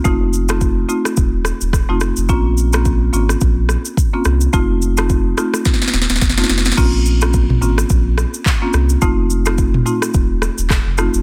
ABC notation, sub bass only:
X:1
M:4/4
L:1/16
Q:"Swing 16ths" 1/4=107
K:Bbm
V:1 name="Sub bass" clef=bass
F,,,6 z2 E,,,3 E,,,2 F,,,2 F,,, | B,,,6 A,,,2 B,,,3 z3 C,,2 | F,,,6 z4 E,,, E,,, F,,,2 F,,,2 | B,,,6 A,,,2 B,,,3 z3 C,,2 |
F,,,6 z2 E,,,3 E,,,2 F,,,2 F,,, |]